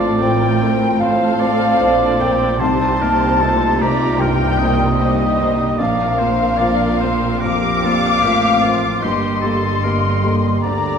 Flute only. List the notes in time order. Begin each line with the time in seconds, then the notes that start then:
0.21 G5
0.99 F5
2.21 G5
2.59 A5
3.81 A#5
4.19 G5
4.99 D#5
5.78 F5
7.43 D6
9.03 C6
10.62 A#5